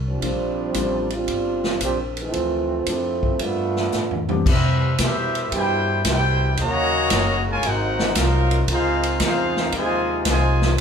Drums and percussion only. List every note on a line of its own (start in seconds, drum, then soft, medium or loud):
0.22 kick soft
0.22 ride medium
0.74 kick soft
0.74 hi-hat pedal medium
0.74 ride medium
1.10 ride soft
1.28 kick soft
1.28 ride medium
1.64 snare medium
1.81 kick soft
1.81 hi-hat pedal medium
1.81 ride medium
2.17 ride medium
2.33 kick soft
2.33 ride medium
2.86 kick soft
2.86 hi-hat pedal medium
2.86 ride medium
3.23 kick medium
3.39 kick soft
3.39 ride medium
3.76 snare medium
3.92 snare medium
3.92 hi-hat pedal medium
4.11 floor tom medium
4.29 floor tom medium
4.46 kick medium
4.46 crash medium
4.98 kick soft
4.98 snare medium
4.98 hi-hat pedal medium
4.98 ride medium
5.35 ride medium
5.52 kick soft
5.52 ride medium
6.05 kick soft
6.05 snare medium
6.05 hi-hat pedal medium
6.05 ride medium
6.57 kick soft
6.57 ride medium
7.10 kick soft
7.10 snare medium
7.10 hi-hat pedal medium
7.10 ride medium
7.63 kick soft
7.63 ride medium
7.99 snare medium
8.15 kick soft
8.15 snare medium
8.15 hi-hat pedal medium
8.15 ride medium
8.51 ride medium
8.68 kick soft
8.68 ride medium
9.03 ride medium
9.20 kick soft
9.20 snare medium
9.20 hi-hat pedal medium
9.20 ride medium
9.57 snare medium
9.72 kick soft
9.72 ride medium
10.25 kick soft
10.25 snare medium
10.25 hi-hat pedal medium
10.25 ride medium
10.62 snare medium